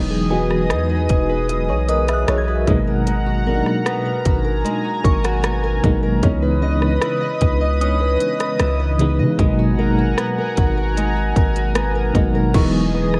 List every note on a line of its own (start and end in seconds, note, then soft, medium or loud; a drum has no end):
0.00 0.72 E1 loud
0.00 0.25 E3 medium
0.00 1.48 E3 medium
0.00 0.25 F#3 medium
0.00 0.26 G#3 medium
0.00 0.26 B3 medium
0.00 0.26 D#4 medium
0.00 2.65 G#4 medium
0.00 2.65 D#5 medium
0.00 2.65 D#6 medium
0.10 0.50 G#4 medium
0.30 1.67 E3 medium
0.30 1.67 F#3 medium
0.30 1.67 G#3 medium
0.30 1.68 B3 medium
0.30 1.50 F#4 medium
0.30 0.89 B4 medium
0.30 1.40 G#5 medium
0.50 1.09 G#4 medium
0.50 cross-stick medium
0.70 1.08 E2 medium
0.70 2.28 D#4 medium
0.70 cross-stick loud
0.70 closed hi-hat medium
0.89 1.29 B4 medium
1.09 1.71 E1 loud
1.09 1.68 G#4 medium
1.09 kick medium
1.09 closed hi-hat medium
1.29 1.88 B4 medium
1.49 2.75 E3 medium
1.49 closed hi-hat medium
1.69 2.25 B1 loud
1.69 2.08 G#4 medium
1.69 1.88 G#4 medium
1.69 1.88 C#5 medium
1.88 2.08 A#4 medium
1.88 2.47 B4 medium
1.88 2.08 D#5 medium
1.88 2.98 D#6 medium
1.88 closed hi-hat medium
2.08 2.90 G#4 medium
2.08 2.28 B4 medium
2.08 2.28 E5 medium
2.08 cross-stick medium
2.08 closed hi-hat medium
2.13 3.20 F#6 medium
2.28 2.66 B1 medium
2.28 3.85 D#4 medium
2.28 2.48 G#4 medium
2.28 2.47 C#5 medium
2.28 cross-stick loud
2.28 closed hi-hat medium
2.38 3.42 G#6 medium
2.48 2.86 F#4 medium
2.48 2.87 B4 medium
2.48 2.86 B4 medium
2.67 3.62 G#1 loud
2.67 3.35 B2 medium
2.67 3.36 F#3 medium
2.67 3.06 G#3 medium
2.67 3.36 G#3 medium
2.67 3.36 A#3 medium
2.67 3.37 D#4 loud
2.67 4.25 F#5 medium
2.67 6.20 A#5 medium
2.67 kick loud
2.67 closed hi-hat medium
2.87 3.45 A#4 medium
3.07 4.64 G#3 medium
3.07 closed hi-hat medium
3.26 3.65 F#4 medium
3.46 4.83 B2 medium
3.46 4.83 F#3 medium
3.46 4.83 G#3 medium
3.46 4.84 A#3 medium
3.46 3.54 D4 medium
3.46 4.04 A#4 medium
3.55 4.87 D#4 medium
3.66 4.24 F#4 medium
3.66 cross-stick medium
3.86 5.43 B3 medium
3.86 cross-stick loud
3.86 closed hi-hat medium
4.05 4.43 A#4 medium
4.25 4.64 G#1 loud
4.25 4.83 F#4 medium
4.25 6.21 G#5 medium
4.25 kick medium
4.25 closed hi-hat medium
4.45 5.03 A#4 medium
4.64 8.14 G#3 medium
4.64 closed hi-hat medium
4.84 5.23 F#4 medium
5.04 5.80 G#1 loud
5.04 5.62 A#4 medium
5.04 6.13 C#6 medium
5.04 kick loud
5.04 closed hi-hat medium
5.24 5.82 F#4 medium
5.24 cross-stick medium
5.24 closed hi-hat medium
5.44 6.22 B3 medium
5.44 cross-stick loud
5.44 closed hi-hat medium
5.63 6.01 A#4 medium
5.83 6.22 G#1 loud
5.83 6.17 B2 medium
5.83 6.18 F#3 medium
5.83 6.18 G#3 medium
5.83 6.18 A#3 medium
5.83 6.19 D#4 medium
5.83 6.31 F#4 medium
5.83 kick medium
5.83 closed hi-hat medium
6.02 6.30 A#4 medium
6.22 6.99 C#2 loud
6.22 6.57 C#3 medium
6.22 6.57 E3 medium
6.22 6.57 G#3 medium
6.22 6.58 B3 medium
6.22 7.80 C#4 medium
6.22 6.58 D#4 medium
6.22 9.36 B4 medium
6.22 9.36 D#5 medium
6.22 9.36 D#6 medium
6.22 kick loud
6.22 closed hi-hat medium
6.42 6.82 B4 medium
6.62 7.98 C#3 medium
6.62 7.99 E3 medium
6.62 7.99 G#3 medium
6.62 7.99 B3 medium
6.62 6.70 D4 medium
6.62 7.21 D#5 medium
6.71 8.03 D#4 medium
6.82 7.41 B4 medium
6.82 cross-stick medium
7.02 8.59 E4 medium
7.02 cross-stick loud
7.02 closed hi-hat medium
7.21 7.61 D#5 medium
7.41 8.17 C#2 loud
7.41 8.00 B4 medium
7.41 kick medium
7.41 closed hi-hat medium
7.61 8.20 D#5 medium
7.81 9.47 C#4 medium
7.81 8.90 D#6 medium
7.81 closed hi-hat medium
8.01 8.40 B4 medium
8.20 8.79 D#5 medium
8.20 closed hi-hat medium
8.40 8.99 B4 medium
8.40 cross-stick medium
8.40 closed hi-hat medium
8.60 9.21 C#2 medium
8.60 9.47 E4 medium
8.60 cross-stick loud
8.60 closed hi-hat medium
8.80 9.19 D#5 medium
8.99 9.33 C#3 medium
8.99 9.33 E3 medium
8.99 9.34 G#3 medium
8.99 9.34 B3 medium
8.99 9.34 D#4 loud
8.99 9.78 B4 medium
8.99 closed hi-hat medium
9.19 9.38 C#3 medium
9.19 12.58 D#5 medium
9.38 10.15 G#1 loud
9.38 9.72 B2 medium
9.38 9.73 F#3 medium
9.38 10.96 G#3 medium
9.38 9.73 G#3 medium
9.38 9.73 A#3 medium
9.38 9.74 D#4 medium
9.38 12.52 F#5 medium
9.38 12.52 G#5 medium
9.38 12.52 A#5 medium
9.38 kick loud
9.38 closed hi-hat medium
9.59 9.97 F#4 medium
9.78 11.14 B2 medium
9.78 11.14 F#3 medium
9.78 11.15 G#3 medium
9.78 11.15 A#3 medium
9.78 11.15 D#4 medium
9.78 10.37 A#4 medium
9.98 10.57 F#4 medium
10.18 11.75 B3 medium
10.18 cross-stick loud
10.18 closed hi-hat medium
10.38 10.76 A#4 medium
10.57 11.33 G#1 loud
10.57 11.15 F#4 medium
10.57 kick medium
10.57 closed hi-hat medium
10.77 11.35 A#4 medium
10.97 12.54 G#3 medium
10.97 closed hi-hat medium
11.17 11.55 F#4 medium
11.36 12.12 G#1 loud
11.36 11.94 A#4 medium
11.36 kick loud
11.36 closed hi-hat medium
11.56 12.14 F#4 medium
11.56 closed hi-hat soft
11.76 12.94 B3 medium
11.76 cross-stick loud
11.76 closed hi-hat medium
11.96 12.34 A#4 medium
12.14 12.53 G#1 loud
12.14 12.49 B2 medium
12.14 12.49 F#3 medium
12.14 12.49 G#3 medium
12.14 12.50 A#3 medium
12.14 12.50 D#4 loud
12.14 12.62 F#4 medium
12.14 kick loud
12.14 closed hi-hat medium
12.35 12.63 A#4 medium
12.53 13.20 E1 loud
12.53 13.20 E3 medium
12.53 13.20 F#3 medium
12.53 13.20 G#3 medium
12.53 13.20 B3 medium
12.53 13.20 D#4 medium
12.53 13.20 G#4 medium
12.53 13.20 D#5 medium
12.53 13.20 C#6 medium
12.53 13.20 D#6 medium
12.53 kick loud
12.53 closed hi-hat medium
12.53 crash loud
12.94 13.20 B3 medium
13.14 cross-stick medium